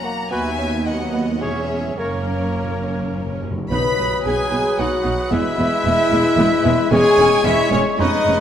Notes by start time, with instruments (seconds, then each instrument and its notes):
Already playing: french horn section F#3 A#3, violin section F#5 A#5, flute A#5
0.04 bassoon A#3
0.30 cello section D#2, double bass section D#2, french horn section F#3 B3, bassoon B3, viola section B3 F#4, clarinet F#4, oboe B4, violin section E5 G#5, flute G#5
0.58 bassoon C#4
0.86 french horn section F#3 B3, viola section B3 F#4, bassoon D#4, violin section D#5 F#5, flute F#5
1.14 bassoon B3
1.40 double bass section E1, cello section E2, french horn section G#3 C#4, bassoon C#4, viola section C#4 G#4, clarinet G#4, oboe C#5, violin section C#5 E5, flute E5
1.96 double bass section F#1, cello section F#2, timpani F#2, french horn section A#3 C#4, bassoon A#3, viola section C#4 A#4, clarinet A#4, violin section A#4 C#5, flute C#5, oboe C#5
2.07 timpani F#2
2.15 timpani F#2
2.22 timpani F#2
2.31 timpani F#2
2.57 timpani F#2
2.63 timpani F#2
2.71 timpani F#2
2.78 timpani F#2
2.87 timpani F#2
2.95 timpani F#2
3.02 timpani F#2
3.11 timpani F#2
3.18 timpani F#2
3.26 timpani F#2
3.34 timpani F#2
3.42 timpani F#2
3.51 timpani F#2
3.58 timpani F#2
3.70 double bass section B1, cello section B2, timpani B2, bassoon F#3, viola section B3 D#4, french horn section B4, oboe B4, clarinet B4, violin section B5, flute D#6
3.98 double bass section B1, cello section B2, viola section B3 D#4
4.25 double bass section B1, cello section B2, viola section B3 D#4, french horn section G#4, clarinet G#4, violin section G#5
4.51 double bass section B1, cello section B2, viola section B3 D#4
4.78 double bass section B1, cello section B2, viola section B3 D#4, french horn section F#4, clarinet F#4, violin section F#5
5.04 double bass section B1, cello section B2, viola section B3 D#4
5.31 double bass section E1, cello section E2, viola section G#3 B3, bassoon G#3, french horn section E4, clarinet E4, violin section E5, flute E6
5.58 double bass section E1, cello section E2, viola section G#3 B3
5.85 double bass section E1, cello section E2, viola section G#3 B3
6.11 double bass section E1, cello section E2, viola section G#3 B3
6.37 double bass section E1, cello section E2, viola section G#3 B3
6.64 double bass section E1, cello section E2, viola section G#3 B3
6.91 double bass section E1, cello section E2, bassoon G#3, viola section G#3 C#4, french horn section G#4, clarinet G#4, oboe C#5, violin section G#5, flute C#6
7.17 double bass section E1, cello section E2, viola section G#3 C#4
7.44 double bass section E1, cello section E2, bassoon G#3, viola section G#3 C#4, clarinet E4, french horn section E4, oboe C#5, violin section E5, flute C#6
7.71 double bass section E1, cello section E2, viola section G#3 C#4, french horn section C#4, clarinet C#4, violin section C#5
7.99 double bass section F1, cello section F2, bassoon G#3, viola section B3 C#4, french horn section D#4, clarinet D#4, oboe B4, violin section D#5, flute C#6
8.26 double bass section F1, cello section F2, viola section B3 C#4